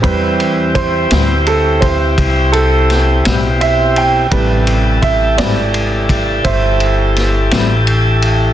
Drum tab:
RD |xxxxxxxxxxxx|xxxxxxxxxxxx|
SD |---o----oo--|---o----oo--|
BD |o-o--oo-----|o-o--oo-----|